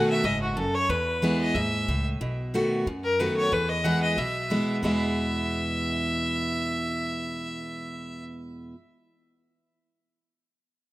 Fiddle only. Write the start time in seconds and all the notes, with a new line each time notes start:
0.10 E5
0.25 D#5
0.42 F#4
0.56 A4
0.74 C#5
0.89 B4
1.41 D#5
1.55 E5
3.04 A#4
3.19 B4
3.37 C#5
3.53 B4
3.69 D#5
3.85 F#5
4.03 D#5
4.18 E5
4.84 E5